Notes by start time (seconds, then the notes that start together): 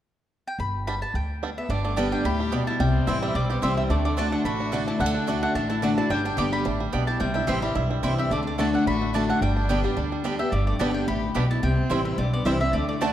0.48 G5
0.59 G1 B5
0.87 G3 B3 D4 B5
1.02 A5
1.14 D2 G5
1.43 G3 B3 D4
1.58 B3 E5
1.69 G1 G2 G3 D4 D5
1.85 D3 A3 D5
1.96 D3 G3 B3 D4 G4 D5 G5 A5
2.12 D4 G5
2.24 D2 A2 G4 B5
2.40 G3
2.52 B2 B3 D4 G4 D5 G5
2.67 G3 E4 A5
2.80 C2 C3 G3 C4 G5
3.07 A1 E3 G3 C4 E4 C5 G5
3.22 G3 C4 E5
3.35 B1 G2 G3 C4 D5
3.50 B3 G4 D5
3.62 C2 E3 G3 C4 E4 C5 E5 G5
3.77 G3 C4 E5
3.90 D2 D3 A3 D5
4.05 A3 D4 D5
4.17 D3 A3 D4 F#4 D5 A5
4.32 D4 F#5
4.45 A1 A2 A3 F#4 B5
4.60 D4
4.72 D3 A3 D4 F#4 D5 A5
4.88 D4 E4 A5
5.00 D2 D3 G3 D4 F#5
5.06 A3
5.14 D4
5.27 D3 A3 D4 F#4 D5 A5
5.43 A3 D4 F#5
5.55 A1 A2 D4 A5
5.70 A3 E4 A5
5.82 D3 A3 D4 F#4 D5 F#5 A5
5.97 D4 E4 F#4 A5
6.10 G1 G2 G3 D4 G5
6.25 D4 G5
6.37 G1 D3 G3 B3 G4 D5 G5 D6
6.52 G3 G4 B5
6.65 A1 A2 D4
6.80 G3
6.92 B1 B2 B3 D4 G4 D5 G5
7.07 E4 G4 A5
7.20 C2 C3 G3 C4 G5
7.34 D4 E4 G5
7.47 A1 E3 G3 C4 E4 G4 C5 G5 C6
7.62 G3 C4 E4 G4 B5
7.75 B1 G2 E4
7.91 G3
8.03 C2 E3 G3 C4 E4 C5 G5
8.18 C4 G4 E5
8.31 D2 D3 A3 D4 D5
8.42 G3 B4
8.47 A3 D5
8.58 D3 A3 D4 F#4 D5 A5
8.74 D4 F#5
8.86 A1 A2 D4 F#4 B5
9.02 A3
9.13 D3 A3 D4 F#4 D5 A5
9.29 A3 D4 F#5
9.41 G1 G2 G3 D4 G5
9.57 D4
9.69 D3 G3 B3 G4 D5 G5
9.83 G3 B3 G4
9.97 D2 D3 D4
10.12 G3
10.24 D3 G3 B3 D4 G4 D5 G5
10.39 B3 G4 E5
10.52 G1 G2 G3 D5
10.67 A3 D5
10.79 G1 D3 G3 B3 D4 G4 D5 G5 A5
10.91 C4 D4 E5 G5
11.07 A1 A2 G4 B5
11.35 B1 B2 G3 B3 D4 G4 D5 G5 B5
11.50 E4 A5
11.63 C2 C3 C4 G5
11.90 A1 E3 G3 C4 E4 C5 G5
12.05 C4 E5
12.18 B1 G2 G3 D5
12.33 B3 D5
12.45 C2 E3 G3 C4 E4 C5 E5 G5
12.60 C4 E4 E5
12.73 D2 D3 A3 D5
12.88 A3 D5
13.01 D3 A3 D4 F#4 D5 A5